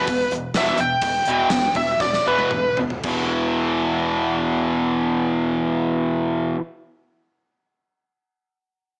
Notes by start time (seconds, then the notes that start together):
Already playing: B4
0.07 E1 E2 B2, kick, closed hi-hat
0.30 E1 E2 B2, closed hi-hat
0.53 E1 E2 B2 E3 E5, snare, closed hi-hat
0.77 E1 E2 B2 G5, closed hi-hat
1.01 E1 E2 B2, kick, closed hi-hat
1.25 E1 E2 B2 E3, closed hi-hat
1.50 E1 E2 B2, snare, closed hi-hat
1.75 E1 E2 B2 E5, kick, closed hi-hat
2.00 E1 E2 B2 D5, kick, snare
2.13 snare
2.27 E1 E2 B2 E3 B4
2.39 high tom
2.51 E1 E2 B2, mid tom
2.77 E1 E2 B2, floor tom
2.90 floor tom
3.03 E1 E2 B2, kick, crash
3.09 E3